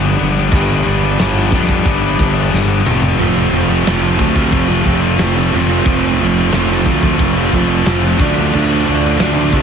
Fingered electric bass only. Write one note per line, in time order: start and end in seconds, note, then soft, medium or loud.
0.00 0.19 G1 loud
0.21 0.52 G1 medium
0.52 0.85 G1 loud
0.86 1.18 G1 medium
1.20 1.51 G1 medium
1.52 1.84 F2 medium
1.86 2.18 G1 medium
2.19 2.52 G1 medium
2.54 2.85 G1 loud
2.87 3.19 F1 loud
3.21 3.53 F1 loud
3.53 3.85 F1 loud
3.87 4.19 F1 medium
4.19 4.51 D2 medium
4.53 4.85 F1 medium
4.86 5.18 F1 medium
5.21 5.52 F1 loud
5.54 5.86 F1 loud
5.86 6.19 F1 loud
6.22 6.53 F1 medium
6.54 6.86 F1 medium
6.86 7.19 D2 medium
7.19 7.52 F1 medium
7.53 7.85 F1 medium
7.86 8.19 F1 medium
8.20 8.52 D2 medium
8.55 8.87 D2 loud
8.89 9.20 D2 medium
9.21 9.53 D2 medium
9.54 9.62 C3 medium